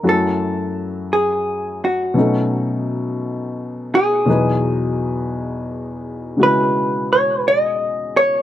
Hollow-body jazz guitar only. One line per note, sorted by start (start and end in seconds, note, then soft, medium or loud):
0.00 0.10 A#4 medium
0.09 1.12 A4 medium
1.13 1.83 G#4 medium
1.85 3.89 F#4 medium
3.95 6.00 G#4 medium
6.43 7.12 B4 medium
7.13 7.47 C#5 medium
7.48 8.17 D#5 medium
8.17 8.42 C#5 loud